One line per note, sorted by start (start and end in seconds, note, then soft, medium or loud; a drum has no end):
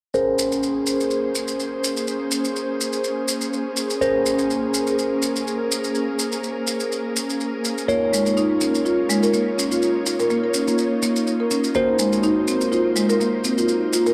0.14 11.72 A#3 medium
0.14 3.99 C#4 medium
0.14 7.85 C#4 medium
0.14 3.99 G#4 medium
0.14 7.85 G#4 medium
0.14 3.99 A#4 medium
0.14 3.99 C5 medium
0.14 3.98 C5 medium
0.14 maracas soft
0.39 maracas medium
0.52 maracas soft
0.63 maracas soft
0.87 maracas medium
1.00 maracas soft
1.11 maracas soft
1.35 maracas medium
1.48 maracas soft
1.60 maracas soft
1.84 maracas medium
1.97 maracas soft
2.07 maracas soft
2.31 maracas medium
2.45 maracas medium
2.56 maracas soft
2.81 maracas medium
2.93 maracas soft
3.04 maracas soft
3.28 maracas loud
3.41 maracas medium
3.53 maracas soft
3.77 maracas medium
3.90 maracas medium
4.01 7.86 C#4 medium
4.01 7.86 G#4 medium
4.01 7.85 A#4 medium
4.01 7.86 A#4 medium
4.01 7.86 C5 medium
4.01 maracas soft
4.26 maracas medium
4.39 maracas soft
4.50 maracas soft
4.74 maracas medium
4.87 maracas medium
4.99 maracas soft
5.22 maracas medium
5.36 maracas medium
5.47 maracas soft
5.72 maracas medium
5.84 maracas soft
5.95 maracas soft
6.19 maracas medium
6.32 maracas medium
6.44 maracas soft
6.67 maracas medium
6.80 maracas soft
6.92 maracas soft
7.16 maracas loud
7.30 maracas soft
7.40 maracas soft
7.65 maracas medium
7.78 maracas medium
7.88 8.00 A#3 medium
7.88 11.73 D#4 medium
7.88 14.14 D#4 medium
7.88 11.73 F4 medium
7.88 11.72 F4 medium
7.88 11.73 A#4 medium
7.88 11.73 C#5 medium
7.88 11.72 C#5 medium
7.88 maracas soft
8.13 8.25 G#3 medium
8.13 maracas medium
8.26 maracas soft
8.37 8.49 D#4 medium
8.37 maracas soft
8.61 8.68 C#4 medium
8.61 maracas medium
8.75 maracas soft
8.85 8.97 F4 medium
8.85 maracas soft
9.09 9.22 G#3 medium
9.09 maracas medium
9.23 9.33 A#4 medium
9.23 maracas soft
9.34 9.46 A#3 medium
9.34 maracas soft
9.58 9.65 C#4 medium
9.58 maracas medium
9.71 9.81 F4 medium
9.71 maracas medium
9.82 maracas soft
10.06 10.14 F4 medium
10.06 maracas medium
10.20 10.29 A#4 medium
10.20 maracas soft
10.30 10.43 A#3 medium
10.30 maracas soft
10.44 10.50 A#4 medium
10.54 10.62 C#4 medium
10.54 maracas medium
10.68 10.78 A#3 medium
10.68 maracas soft
10.78 maracas soft
11.03 11.16 A#3 medium
11.03 maracas medium
11.16 maracas soft
11.27 maracas soft
11.40 11.46 A#4 medium
11.51 11.58 C#4 medium
11.51 maracas medium
11.64 maracas soft
11.75 11.87 A#3 medium
11.75 14.14 A#3 medium
11.75 14.14 D#4 medium
11.75 14.14 F#4 medium
11.75 14.14 A#4 medium
11.75 13.67 C5 medium
11.75 14.14 C5 medium
11.75 maracas soft
11.99 12.12 G#3 medium
11.99 maracas medium
12.13 maracas soft
12.23 12.36 D#4 medium
12.23 maracas soft
12.48 12.55 C4 medium
12.48 maracas medium
12.61 maracas soft
12.72 12.84 F4 medium
12.72 maracas soft
12.96 13.09 G#3 medium
12.96 maracas medium
13.09 13.19 A#4 loud
13.09 maracas soft
13.20 13.33 A#3 medium
13.20 maracas soft
13.44 13.52 C4 medium
13.44 maracas medium
13.58 13.68 F4 medium
13.58 maracas soft
13.68 14.14 A#4 medium
13.68 maracas soft
13.93 14.00 F4 medium
13.93 maracas medium
14.06 14.14 A#4 medium
14.06 maracas soft